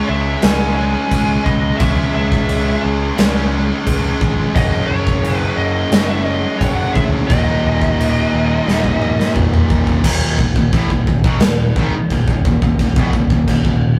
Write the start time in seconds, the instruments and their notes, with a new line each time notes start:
Already playing: distorted electric guitar C#3 G#3 C#4
0.04 distorted electric guitar C#3 G#3
0.09 picked electric bass C#2, distorted electric guitar G#3, lead electric guitar E5
0.13 distorted electric guitar C#3
0.19 distorted electric guitar C#3 G#3
0.27 distorted electric guitar C#3 G#3
0.35 distorted electric guitar C#3 G#3
0.42 picked electric bass C#2, distorted electric guitar C#3 G#3 C#4, lead electric guitar G#5, snare, crash
0.49 distorted electric guitar C#3 G#3
0.59 distorted electric guitar C#3 G#3
0.65 distorted electric guitar C#3 G#3
0.73 distorted electric guitar C#3 G#3, lead electric guitar G#5
0.80 distorted electric guitar C#3 G#3
0.88 distorted electric guitar C#3 G#3
0.96 distorted electric guitar C#3 G#3
1.04 distorted electric guitar C#3 G#3
1.11 picked electric bass C#2, distorted electric guitar C#3 G#3, kick, crash
1.19 distorted electric guitar C#3 G#3
1.27 distorted electric guitar C#3 G#3
1.34 distorted electric guitar C#3 G#3
1.42 picked electric bass C#2, distorted electric guitar C#3 G#3, lead electric guitar D#5, kick
1.49 distorted electric guitar C#3 G#3
1.57 distorted electric guitar C#3 G#3
1.64 distorted electric guitar C#3 G#3
1.71 distorted electric guitar C#3 G#3
1.78 picked electric bass C#2, distorted electric guitar C#3, lead electric guitar E5, kick, crash
1.82 distorted electric guitar G#3 C#4
1.88 distorted electric guitar C#3 G#3
1.96 distorted electric guitar C#3 G#3
2.04 distorted electric guitar C#3 G#3
2.12 picked electric bass C#2, distorted electric guitar C#3 G#3, lead electric guitar E5
2.19 distorted electric guitar C#3 G#3
2.27 distorted electric guitar C#3 G#3
2.32 distorted electric guitar C#3 G#3, kick
2.42 distorted electric guitar C#3 G#3
2.49 picked electric bass C#2, distorted electric guitar C#3 G#3, crash
2.57 distorted electric guitar C#3 G#3
2.65 distorted electric guitar C#3 G#3
2.72 distorted electric guitar C#3 G#3
2.80 distorted electric guitar C#3 G#3
2.85 picked electric bass C#2, distorted electric guitar C#3 G#3
2.95 distorted electric guitar C#3 G#3
3.02 distorted electric guitar C#3 G#3
3.10 distorted electric guitar C#3 G#3
3.18 picked electric bass C#2, distorted electric guitar C#3 G#3 C#4, snare, crash
3.26 distorted electric guitar C#3 G#3
3.33 distorted electric guitar C#3 G#3
3.40 distorted electric guitar C#3 G#3
3.47 distorted electric guitar C#3 G#3
3.56 distorted electric guitar C#3 G#3
3.65 distorted electric guitar C#3 G#3
3.72 distorted electric guitar C#3 G#3
3.78 distorted electric guitar C#3 G#3
3.86 picked electric bass C#2, distorted electric guitar C#3 G#3, kick, crash
3.94 distorted electric guitar C#3 G#3
4.02 distorted electric guitar C#3 G#3
4.10 distorted electric guitar C#3 G#3
4.17 picked electric bass G#1, distorted electric guitar C#3 G#3, kick
4.25 distorted electric guitar C#3 G#3
4.32 distorted electric guitar C#3 G#3
4.40 distorted electric guitar C#3 G#3
4.47 distorted electric guitar C#3 G#3
4.55 picked electric bass F#1, distorted electric guitar F#2 C#3 F#3, lead electric guitar D#5, kick, crash
4.63 distorted electric guitar F#2 C#3
4.71 distorted electric guitar F#2 C#3
4.78 distorted electric guitar F#2 C#3
4.86 picked electric bass F#1, distorted electric guitar F#2 C#3, lead electric guitar C#5
4.93 distorted electric guitar F#2 C#3
5.01 distorted electric guitar F#2 C#3
5.07 distorted electric guitar F#2 C#3, kick
5.16 distorted electric guitar F#2 C#3
5.23 picked electric bass F#1, distorted electric guitar F#2 C#3, crash
5.32 distorted electric guitar F#2 C#3
5.37 distorted electric guitar F#2 C#3, lead electric guitar B4
5.47 distorted electric guitar F#2 C#3
5.55 picked electric bass F#1, distorted electric guitar F#2 C#3, lead electric guitar D#5
5.62 distorted electric guitar F#2 C#3
5.70 distorted electric guitar F#2 C#3
5.76 distorted electric guitar F#2 C#3
5.85 distorted electric guitar F#2 C#3
5.91 picked electric bass F#1, distorted electric guitar F#2 C#3, snare, crash
5.95 distorted electric guitar F#3
6.00 distorted electric guitar F#2 C#3
6.08 distorted electric guitar F#2 C#3, lead electric guitar E5
6.16 distorted electric guitar F#2 C#3
6.23 distorted electric guitar F#2 C#3, lead electric guitar D#5
6.31 distorted electric guitar F#2 C#3
6.39 distorted electric guitar F#2 C#3
6.46 distorted electric guitar F#2 C#3
6.53 distorted electric guitar F#2 C#3
6.59 picked electric bass F#1, distorted electric guitar F#2 C#3, lead electric guitar C#5, kick, crash
6.69 distorted electric guitar F#2 C#3
6.73 distorted electric guitar F#2, lead electric guitar F#5
6.78 distorted electric guitar C#3
6.84 distorted electric guitar F#2 C#3
6.92 picked electric bass D2, distorted electric guitar F#2 C#3, lead electric guitar E5, kick
6.99 distorted electric guitar F#2 C#3
7.06 distorted electric guitar F#2 C#3
7.16 distorted electric guitar F#2 C#3
7.24 distorted electric guitar F#2 C#3, lead electric guitar D#5
7.30 picked electric bass D#1, distorted electric guitar D#2 A#2 D#3, kick, crash
7.38 distorted electric guitar D#2 A#2
7.45 distorted electric guitar D#2 A#2
7.52 distorted electric guitar D#2 A#2
7.61 distorted electric guitar D#2 A#2
7.65 picked electric bass D#1, distorted electric guitar D#2
7.72 distorted electric guitar D#2 A#2
7.77 distorted electric guitar A#2
7.82 distorted electric guitar D#2, kick
7.86 distorted electric guitar A#2
7.90 distorted electric guitar D#2 A#2
7.98 picked electric bass D#1, distorted electric guitar D#2 A#2, crash
8.07 distorted electric guitar D#2 A#2
8.13 distorted electric guitar D#2 A#2
8.20 distorted electric guitar D#2
8.25 distorted electric guitar D#2 A#2
8.32 picked electric bass D#1, distorted electric guitar A#2
8.37 distorted electric guitar D#2 A#2
8.43 distorted electric guitar D#2
8.48 distorted electric guitar D#2 A#2
8.55 distorted electric guitar D#2 A#2
8.64 distorted electric guitar D#2 A#2
8.68 picked electric bass D#1, distorted electric guitar A#2 D#3, snare
8.74 distorted electric guitar D#2
8.79 distorted electric guitar D#2 A#2
8.84 distorted electric guitar A#2, kick
8.89 distorted electric guitar D#2
8.94 distorted electric guitar D#2 A#2
9.02 distorted electric guitar D#2 A#2, mid tom
9.11 distorted electric guitar D#2 A#2
9.19 distorted electric guitar D#2 A#2, snare
9.26 distorted electric guitar D#2 A#2
9.33 picked electric bass D#1, distorted electric guitar D#2 A#2, kick, mid tom
9.41 distorted electric guitar D#2 A#2
9.50 distorted electric guitar D#2 A#2, mid tom
9.57 distorted electric guitar D#2 A#2
9.64 distorted electric guitar D#2 A#2
9.70 picked electric bass D#1, distorted electric guitar D#2 A#2, kick
9.80 distorted electric guitar D#2 A#2
9.87 distorted electric guitar D#2 A#2, kick
9.94 distorted electric guitar D#2 A#2
10.04 picked electric bass D#1, distorted electric guitar D#2 A#2 D#3, kick, crash, china
10.39 picked electric bass D#1, distorted electric guitar D#2 A#2, kick
10.56 picked electric bass D#1, distorted electric guitar D#2 A#2, kick
10.73 picked electric bass A1, distorted electric guitar A2 E3, kick, china
10.90 picked electric bass D#1, distorted electric guitar D#2 A#2, kick
11.07 picked electric bass D#1, distorted electric guitar D#2 A#2, kick
11.24 picked electric bass B1, distorted electric guitar B2 F#3, kick
11.40 picked electric bass D#1, distorted electric guitar D#2 A#2, snare, china
11.76 picked electric bass G#1, distorted electric guitar G#2 D#3, kick
11.93 muted picked electric bass stroke, muted distorted electric guitar stroke
12.10 picked electric bass D#1, distorted electric guitar D#2 A#2, kick, china
12.27 picked electric bass D#1, distorted electric guitar A#2, kick
12.31 distorted electric guitar D#2
12.45 picked electric bass D#1, distorted electric guitar D#2 A#2, kick
12.62 picked electric bass D#1, distorted electric guitar D#2 A#2, kick
12.79 picked electric bass D#1, distorted electric guitar D#2 A#2, kick, china
12.96 picked electric bass E1, distorted electric guitar E2 B2, kick
13.13 picked electric bass D#1, distorted electric guitar D#2, kick
13.17 distorted electric guitar A#2
13.30 picked electric bass D#1, distorted electric guitar A#2, kick
13.34 distorted electric guitar D#2
13.47 picked electric bass D#1, distorted electric guitar D#2 A#2, kick, china
13.65 picked electric bass D#1, distorted electric guitar D#2 A#2, kick